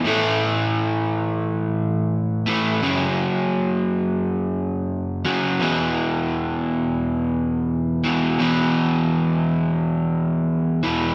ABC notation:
X:1
M:4/4
L:1/8
Q:1/4=86
K:F#phr
V:1 name="Overdriven electric guitar" clef=bass
[A,,E,A,]6- [A,,E,A,] [A,,E,A,] | [F,,C,F,]6- [F,,C,F,] [F,,C,F,] | [E,,B,,E,]6- [E,,B,,E,] [E,,B,,E,] | [E,,B,,E,]6- [E,,B,,E,] [E,,B,,E,] |]